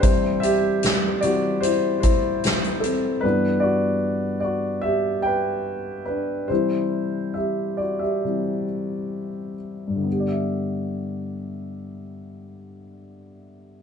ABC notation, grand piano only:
X:1
M:4/4
L:1/16
Q:1/4=71
K:G
V:1 name="Grand piano"
[Ec]2 [Ge]4 [Fd]2 [Ec]2 [Ec]4 [CA]2 | [DB]2 [Fd]4 [Fd]2 [Ge]2 [Bg]4 [DB]2 | [Ec]4 [Ge]2 [Fd] [Ge]6- [Ge] z2 | z16 |]
V:2 name="Grand piano" clef=bass
[C,E,G,]6 [C,E,G,]2 z8 | [G,,E,B,]16 | [C,E,G,]8 [C,E,G,]2 z6 | [G,,D,B,Gde]16 |]